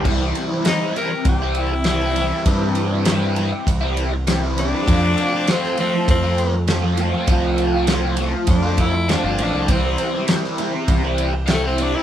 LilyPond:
<<
  \new Staff \with { instrumentName = "Tonewheel organ" } { \time 4/4 \key c \major \tempo 4 = 100 r1 | r1 | r1 | r1 |
<c' e' g'>1 | }
  \new Staff \with { instrumentName = "Tenor saxophone" } { \time 4/4 \key c \major r4 ees'8 bes'8 g'8 e'4.~ | e'8 r2. d'8~ | d'4 c'8 c'8 c'4 r4 | r2 d'8 e'8 d'8 d'8 |
c'4 r2 a16 c'16 d'16 e'16 | }
  \new Staff \with { instrumentName = "Overdriven electric guitar" } { \time 4/4 \key c \major <c e g c' e'>8. <g c' e'>16 <c e g c' e'>8 <e g c' e'>8. <g c' e'>8. <c e g c' e'>16 <g c' e'>16 <e g c' e'>16 <g c' e'>16 | <c e g c' e'>8. <g c' e'>16 <c e g c' e'>8 <e g c' e'>8. <g c' e'>8. <c e g c' e'>16 <g c' e'>16 <e g c' e'>16 <g c' e'>16 | <f a c' f'>8. <a c' f'>16 <f a c' f'>8 <f a c' f'>8. <a c' f'>8. <f a c' f'>16 <a c' f'>16 <f a c' f'>16 <a c' f'>16 | <f a c' f'>8. <a c' f'>16 <f a c' f'>8 <f a c' f'>8. <a c' f'>8. <f a c' f'>16 <a c' f'>16 <f a c' f'>16 <a c' f'>16 |
<c g c' e'>8. <g c' e'>16 <c g c' e'>8 <c g c' e'>8. <g c' e'>8. <c g c' e'>16 <g c' e'>16 <c g c' e'>16 <g c' e'>16 | }
  \new Staff \with { instrumentName = "Steel-string acoustic guitar" } { \time 4/4 \key c \major <c e g c' e'>4 <e g c'>8 <g c' e'>8 <e g c' e'>4 <e g c' e'>8 <g c' e'>8 | <c e g c' e'>4 <e g c' e'>8 <g c' e'>8 <e g c' e'>4 <e g c' e'>8 <g c' e'>8 | <f, c f a c' f'>4 <f a c' f'>8 <f a c' f'>8 <f a c' f'>4 <f a c' f'>8 <f a c' f'>8 | <f, c f a c' f'>4 <f a c' f'>8 <f a c' f'>8 <f a c'>4 <f a c' f'>8 <f a c' f'>8 |
<c e g c' e'>4 <e g c' e'>8 <g c' e'>8 <e g c' e'>4 <e g c' e'>8 <g c' e'>8 | }
  \new Staff \with { instrumentName = "Picked electric bass" } { \clef bass \time 4/4 \key c \major c,8 r4. c,2 | g,2 c,2 | f,8 r4. f,2 | c,2 f,4~ f,16 g,,16 a,,16 c,16 |
c,8 r4. c,2 | }
  \new DrumStaff \with { instrumentName = "Drums" } \drummode { \time 4/4 <cymc bd>8 cymr8 <cymr sn>8 cymr8 <bd cymr>8 cymr8 <cymr sn>8 cymr8 | <bd cymr>8 cymr8 <cymr sn>8 cymr8 <bd cymr>8 cymr8 <cymr sn>8 cymr8 | <bd cymr>8 cymr8 <cymr sn>16 sn16 cymr8 <bd cymr>8 cymr8 <cymr sn>8 cymr8 | <bd cymr>8 cymr8 <cymr sn>8 cymr8 <bd cymr>8 <bd cymr>8 <cymr sn>8 cymr8 |
<bd cymr>8 cymr8 <cymr sn>16 sn16 cymr8 <bd cymr>8 cymr8 <cymr sn>8 cymr8 | }
>>